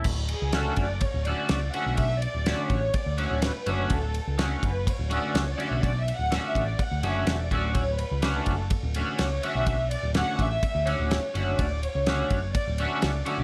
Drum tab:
CC |x-------|--------|--------|--------|
RD |-xxxxxxx|xxxxxxxx|xxxxxxxx|xxxxxxxx|
SD |--o---o-|--o---o-|--o---o-|--o---o-|
BD |o--oo---|o--oo---|o--oo---|o--oo--o|

CC |--------|--------|--------|
RD |xxxxxxxx|xxxxxxxx|xxxxxxxx|
SD |--o---o-|--o---o-|--o---o-|
BD |o--oo---|o--oo---|o--oo---|